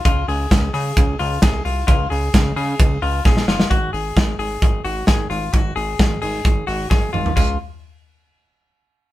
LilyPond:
<<
  \new Staff \with { instrumentName = "Clean electric guitar" } { \time 4/4 \key des \major \tempo 4 = 131 f'8 aes'4 aes'4 f'8 aes'8 f'8 | f'8 aes'4 aes'4 f'8 aes'8 f'8 | ges'8 aes'4 aes'4 ges'8 aes'8 f'8 | ges'8 aes'4 aes'4 ges'8 aes'8 f'8 |
f'8 r2. r8 | }
  \new Staff \with { instrumentName = "Analog synth bass" } { \clef bass \time 4/4 \key des \major des,8 des,8 des,8 des8 des,8 des,8 c,8 c,8 | des,8 des,8 des,8 des8 des,8 des,8 bes,,8 ges,,8 | aes,,8 aes,,8 aes,,8 aes,,8 aes,,8 aes,,8 aes,,8 aes,,8 | aes,,8 aes,,8 aes,,8 aes,,8 aes,,8 aes,,8 aes,,8 aes,,8 |
des,8 r2. r8 | }
  \new DrumStaff \with { instrumentName = "Drums" } \drummode { \time 4/4 <hhp bd cymr>8 hho8 <hhp bd cymr sn>8 hho8 <hhp bd cymr>8 hho8 <hhp bd cymr sn>8 hho8 | <hhp bd cymr>8 hho8 <hhp bd cymr sn>8 hho8 <hhp bd cymr>8 hho8 <bd sn>16 sn16 sn16 sn16 | <hh bd>8 hho8 <hh bd sn>8 hho8 <hh bd>8 hho8 <hh bd sn>8 hho8 | <hh bd>8 hho8 <hh bd sn>8 hho8 <hh bd>8 hho8 <bd sn>8 toml16 tomfh16 |
<cymc bd>4 r4 r4 r4 | }
>>